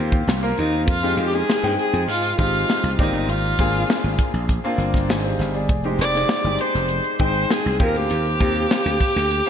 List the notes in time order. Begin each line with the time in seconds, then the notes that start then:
Already playing: D#2 A#3 C4 F4 G4 A#4
0.12 kick, closed hi-hat
0.27 C2, snare
0.42 A#3 C4 F4 A#4, closed hi-hat
0.57 D#2 D#4, closed hi-hat
0.72 closed hi-hat
0.87 F2 F4, kick, closed hi-hat
1.03 G#3 C4 D#4 G4, closed hi-hat
1.17 F2, closed hi-hat
1.27 G4
1.33 G#3 C4 D#4 G4 G#4, closed hi-hat
1.50 snare
1.63 G2 G#3 C4 D#4 G5, closed hi-hat
1.79 G#4, closed hi-hat
1.93 F2, closed hi-hat
2.08 G#2 F4, closed hi-hat
2.24 closed hi-hat
2.38 G#1 G#3 C4 D#4 F4 G4, kick, closed hi-hat
2.54 closed hi-hat
2.70 snare
2.83 C2, closed hi-hat
2.98 G#1 A#3 C4 D#4 G4 D5, kick, snare, closed hi-hat
3.12 G1, closed hi-hat
3.28 G#1 F4, closed hi-hat
3.44 closed hi-hat
3.59 G#1 A#3 C4 D4 G#4, kick, closed hi-hat
3.74 closed hi-hat
3.90 snare
4.04 G#1, closed hi-hat
4.19 kick, closed hi-hat
4.34 A#1, closed hi-hat
4.49 kick, closed hi-hat
4.64 A#3 C4 D4 F4, closed hi-hat
4.78 G1, closed hi-hat
4.94 kick, snare, closed hi-hat
5.09 G#1 D#4 G#4, snare
5.24 G4 C5, closed hi-hat
5.39 G1, snare, closed hi-hat
5.54 G#4 D5, closed hi-hat
5.69 F1, kick, closed hi-hat
5.84 G#3 C4 D#4 G4, closed hi-hat
5.99 F1 D5, closed hi-hat
6.14 G#3 C4 D#4 G4, snare, closed hi-hat
6.29 snare
6.44 G1 G#3 C4 D#4 G4, closed hi-hat
6.59 C5, closed hi-hat
6.74 F1, snare, closed hi-hat
6.89 closed hi-hat
7.04 closed hi-hat
7.19 G#1 G#3 C4 D#4 C5 G5, kick, closed hi-hat
7.35 closed hi-hat
7.50 G#4, snare
7.65 C2, closed hi-hat
7.79 D#2 A#3 C4 F4 G4 A#4, kick, closed hi-hat
7.95 D2 G4, closed hi-hat
8.10 D#2, closed hi-hat
8.25 closed hi-hat
8.40 D#2 A#3 C4 F4 G4, kick, closed hi-hat
8.55 closed hi-hat
8.71 snare
8.86 D2, closed hi-hat
9.01 kick, open hi-hat
9.16 D2, snare, closed hi-hat
9.31 closed hi-hat
9.46 A#3, closed hi-hat